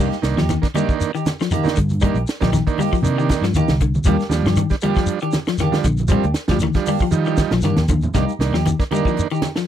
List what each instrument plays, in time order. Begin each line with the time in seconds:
0.00 clean electric guitar G3 A#3 D#4 G4
0.12 snare, closed hi-hat, shekere
0.22 fingered electric bass C2, transistor combo organ D#3 A#3 D4, snare, closed hi-hat, shekere
0.36 fingered electric bass D#2, clean electric guitar F3 D#4 G4, snare, high conga, low conga, shekere
0.49 clean electric guitar D#3, snare, closed hi-hat, high conga, shekere
0.62 transistor combo organ A#3 D4, kick, snare, closed hi-hat, shekere
0.74 transistor combo organ D#3 A#3 D4, clean electric guitar G3 A#3 D#4 G4, closed hi-hat, high conga, shekere
0.89 kick, shekere
1.01 closed hi-hat, shekere
1.15 clean electric guitar D#3 D#4 G4, closed hi-hat, shekere
1.26 snare, closed hi-hat, high conga, shekere
1.40 clean electric guitar F3, snare, closed hi-hat, shekere
1.51 clean electric guitar D#3 A#3 D#4 G4, closed hi-hat, high conga, low conga, shekere
1.64 transistor combo organ D#3 A#3 D4, muted fingered electric bass stroke, snare, closed hi-hat, high conga, shekere
1.76 fingered electric bass G2, clean electric guitar D3, kick, closed hi-hat, high conga, shekere
1.89 closed hi-hat, high conga, shekere
2.01 transistor combo organ D#3 A#3 D4, clean electric guitar G3 A#3 D#4 G4, kick, closed hi-hat, low conga, shekere
2.14 fingered electric bass A#1, closed hi-hat, shekere
2.27 snare, closed hi-hat, shekere
2.40 fingered electric bass A#1, transistor combo organ D#3 A#3 D4, clean electric guitar F3 D#4 G4, kick, snare, closed hi-hat, high conga, shekere
2.53 clean electric guitar D#3, snare, closed hi-hat, high conga, shekere
2.66 transistor combo organ D#3 A#3 D4, kick, closed hi-hat, shekere
2.78 clean electric guitar G3 A#3 D#4 G4, open hi-hat, high conga, shekere
2.93 clean electric guitar F3, kick, shekere
3.02 fingered electric bass C3, transistor combo organ D#3 A#3 D4, closed hi-hat, shekere
3.18 clean electric guitar D#3 G4, muted clean electric guitar stroke, shekere
3.30 kick, snare, closed hi-hat, high conga, shekere
3.41 fingered electric bass G2, clean electric guitar F3, snare, closed hi-hat, shekere
3.53 fingered electric bass D#2, clean electric guitar D#3 A#3 D#4 G4, closed hi-hat, high conga, low conga, shekere
3.68 fingered electric bass C2, snare, closed hi-hat, high conga, shekere
3.80 clean electric guitar D3, kick, closed hi-hat, shekere
3.94 high conga, shekere
4.04 fingered electric bass D#2, transistor combo organ F3 G3 D4, clean electric guitar G3 A#3 D4 G4, kick, closed hi-hat, low conga, shekere
4.20 snare, closed hi-hat, shekere
4.29 fingered electric bass D#2, transistor combo organ F3 G3 D4, snare, closed hi-hat, shekere
4.43 fingered electric bass G2, clean electric guitar F3 D4 G4, snare, high conga, low conga, shekere
4.56 clean electric guitar D#3, closed hi-hat, high conga, shekere
4.70 transistor combo organ G3 D4, kick, snare, closed hi-hat, shekere
4.81 transistor combo organ F3 G3 D4, clean electric guitar G3 A#3 D4 G4, closed hi-hat, high conga, shekere
4.95 clean electric guitar F3, kick, snare, shekere
5.06 closed hi-hat, shekere
5.20 clean electric guitar D#3 D4 G4, closed hi-hat, shekere
5.32 snare, closed hi-hat, high conga, shekere
5.46 clean electric guitar F3, snare, closed hi-hat, shekere
5.58 clean electric guitar D#3 A#3 D4 G4, snare, closed hi-hat, high conga, low conga, shekere
5.72 transistor combo organ F3 G3 D4, muted fingered electric bass stroke, snare, closed hi-hat, high conga, shekere
5.84 fingered electric bass A#1, clean electric guitar D3, kick, closed hi-hat, high conga, shekere
5.97 closed hi-hat, high conga, shekere
6.08 transistor combo organ F3 G3 C4, clean electric guitar G3 A#3 D4 G4, kick, closed hi-hat, low conga, shekere
6.24 fingered electric bass D2, closed hi-hat, shekere
6.34 snare, closed hi-hat, shekere
6.48 fingered electric bass D2, transistor combo organ F3 G3 D4, clean electric guitar F3 D4 G4, kick, snare, closed hi-hat, high conga, low conga, shekere
6.59 clean electric guitar D#3, snare, closed hi-hat, high conga, shekere
6.73 transistor combo organ F3 G3 D4, kick, snare, closed hi-hat, shekere
6.86 clean electric guitar G3 A#3 D4 G4, open hi-hat, high conga, shekere
6.99 clean electric guitar F3, kick, shekere
7.11 fingered electric bass D#3, transistor combo organ F3 G3 D#4, closed hi-hat, shekere
7.25 clean electric guitar D#3 D4 G4, shekere
7.37 kick, snare, closed hi-hat, high conga, shekere
7.51 fingered electric bass A#1, clean electric guitar F3, snare, closed hi-hat, high conga, shekere
7.61 fingered electric bass G2, clean electric guitar D#3 A#3 D4 G4, snare, closed hi-hat, high conga, shekere
7.76 fingered electric bass D#2, snare, closed hi-hat, low conga, shekere
7.88 clean electric guitar D3, kick, closed hi-hat, low conga, shekere
8.02 low conga, shekere
8.14 fingered electric bass C2, transistor combo organ D#3 A#3 D4, clean electric guitar G3 A#3 D#4 G4, kick, snare, closed hi-hat, low conga, shekere
8.29 closed hi-hat, shekere
8.39 fingered electric bass C2, transistor combo organ D#3 A#3 D4, snare, closed hi-hat, shekere
8.52 fingered electric bass D#2, clean electric guitar F3 D#4 G4, snare, shekere
8.66 clean electric guitar D#3, closed hi-hat, high conga, shekere
8.79 transistor combo organ A#3 D4, kick, snare, closed hi-hat, shekere
8.91 transistor combo organ D#3 A#3 D4, clean electric guitar G3 A#3 D#4 G4, closed hi-hat, high conga, shekere
9.05 clean electric guitar F3, kick, shekere
9.17 closed hi-hat, shekere
9.30 clean electric guitar D#3 D#4 G4, closed hi-hat, shekere
9.42 snare, closed hi-hat, high conga, shekere
9.55 clean electric guitar F3, snare, closed hi-hat, shekere